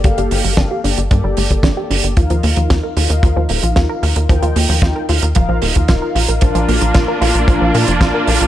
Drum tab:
HH |xxoox-oxx-oxx-ox|xxoxx-oxx-oxx-ox|xxoox-oxx-oxx-ox|xxoxx-oxx-oxx-ox|
SD |----o-------o---|----o-------o---|----o-------o---|----o-------o---|
BD |o---o---o--oo---|o---o---o---o---|o---o---o--oo---|o---o---o---o---|